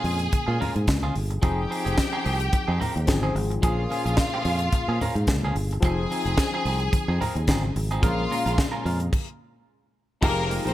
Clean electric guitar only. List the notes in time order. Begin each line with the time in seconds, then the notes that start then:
0.04 G#3 C#4 F4 G#4
0.20 muted clean electric guitar stroke
0.32 muted clean electric guitar stroke
0.47 G#3 C#4 F4 G#4
0.60 G#3 C#4 F4 A#4
0.75 muted clean electric guitar stroke
0.87 muted clean electric guitar stroke
1.03 G#3 C#4 F4 G#4
1.16 muted clean electric guitar stroke
1.30 muted clean electric guitar stroke
1.42 F3 C4 D#4 G#4
1.70 F3 C4 D#4 G#4
1.85 F3 C4 D#4 G#4
1.97 muted clean electric guitar stroke
2.13 F3 C4 D#4 G#4
2.24 F3 C4 D#4 G#4
2.40 muted clean electric guitar stroke
2.52 muted clean electric guitar stroke
2.68 F3 C4 D#4 G#4
2.80 F3 C4 D#4 A#4
2.96 muted clean electric guitar stroke
3.07 muted clean electric guitar stroke
3.23 F3 C4 D#4 G#4
3.51 muted clean electric guitar stroke
3.63 F3 A#3 C#4 G#4
3.90 F3 A#3 C#4 G#4
4.05 F3 A#3 C#4 G#4
4.34 F3 A#3 C#4 G#4
4.47 F3 A#3 C#4 G#4
4.62 muted clean electric guitar stroke
4.74 muted clean electric guitar stroke
4.89 F3 A#3 C#4 G#4
5.01 F3 A#3 C#4 A#4
5.29 muted clean electric guitar stroke
5.44 F3 A#3 C#4 G#4
5.57 muted clean electric guitar stroke
5.73 muted clean electric guitar stroke
5.84 F3 C4 D#4 G#4
6.10 F3 C4 D#4 G#4
6.26 F3 C4 D#4 G#4
6.38 muted clean electric guitar stroke
6.54 F3 C4 D#4 G#4
6.65 F3 C4 D#4 G#4
6.81 muted clean electric guitar stroke
6.93 muted clean electric guitar stroke
7.08 F3 C4 D#4 G#4
7.20 F3 C4 D#4 A#4
7.37 muted clean electric guitar stroke
7.48 F3 C4 D#4 G#4
7.64 muted clean electric guitar stroke
7.76 muted clean electric guitar stroke
7.91 F3 C4 D#4 G#4
8.02 G#3 C#4 F4 A#4
8.31 G#3 C#4 F4 A#4
8.46 G#3 C#4 F4 A#4
8.58 muted clean electric guitar stroke
8.72 G#3 C#4 F4 A#4
8.84 G#3 C#4 F4 A#4
9.00 muted clean electric guitar stroke
10.22 G#3 D#4 G4 A#4
10.50 G#3 D#4 G4 A#4
10.65 G#3 D#4 G4 A#4